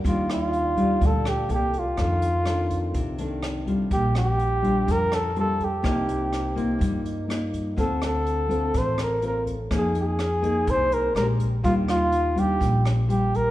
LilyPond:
<<
  \new Staff \with { instrumentName = "Vibraphone" } { \time 4/4 \key ees \lydian \tempo 4 = 124 r8 d''16 f''16 g''8 d''2 r8 | r1 | r1 | r2 r8 ees''4. |
r1 | r1 | r1 | }
  \new Staff \with { instrumentName = "Flugelhorn" } { \time 4/4 \key ees \lydian f'8 f'4. a'8 g'8 g'8 f'8~ | f'2~ f'8 r4. | g'8 g'4. bes'8 a'8 a'8 g'8~ | g'2~ g'8 r4. |
a'8 a'4. c''8 bes'8 bes'8 r8 | aes'8 aes'4. c''8 bes'8 bes'8 r8 | f'8 f'4 g'4 r8 g'8 bes'8 | }
  \new Staff \with { instrumentName = "Nylon-string guitar" } { \time 4/4 \key ees \lydian << { <g d' f'>4. <g d' f'>4. <bes e' a'>8 r8 | <ees a d'>8 r8 <ees a d'>4. <ees a d'>4 <g d' f'>8~ | <g d' f'>4. <g d' f'>4. <g d' f'>8 r8 | <bes ees' f'>4. <bes ees' f'>4. <bes ees' f'>4 |
<a c' f'>4. <a c' f'>4. <a c' f'>8 r8 | <bes ees' aes'>4 r8 <bes ees' aes'>4. <aes d' g'>8 r8 | <g d' f'>4 r8 <g d' f'>4. <g d' f'>8 r8 | } \\ { ees2 bes,4 r4 | f,2 c2 | bes,2 f2 | c2 g2 |
d2 a,2 | f2 c4 r4 | ees2 bes,2 | } >> }
  \new Staff \with { instrumentName = "Upright bass" } { \clef bass \time 4/4 \key ees \lydian ees,2 d,4 c,4 | f,2 c,2 | bes,,2 f,2 | c,2 g,2 |
d,2 a,,2 | f,2 c,4 bes,,4 | ees,2 bes,,2 | }
  \new DrumStaff \with { instrumentName = "Drums" } \drummode { \time 4/4 <hh bd>8 <hh ss>8 hh8 <hh bd>8 <hh bd>8 <hh ss>8 hh8 <hh bd>8 | <hh bd ss>8 hh8 <hh ss>8 <hh bd>8 <hh bd>8 hh8 <hh ss>8 <hh bd>8 | <hh bd>8 <hh ss>8 hh8 <hh bd>8 <hh bd>8 <hh ss>8 hh8 <hh bd>8 | <hh bd ss>8 hh8 <hh ss>8 <hh bd>8 <hh bd>8 hh8 <hh ss>8 <hh bd>8 |
<hh bd>8 <hh ss>8 hh8 <hh bd>8 <hh bd>8 <hh ss>8 hh8 <hh bd>8 | <hh bd ss>8 hh8 <hh ss>8 <hh bd>8 <hh bd>8 hh8 <hh ss>8 <hh bd>8 | <hh bd>8 <hh ss>8 hh8 <hh bd>8 <hh bd>8 <hh ss>8 hh8 <hh bd>8 | }
>>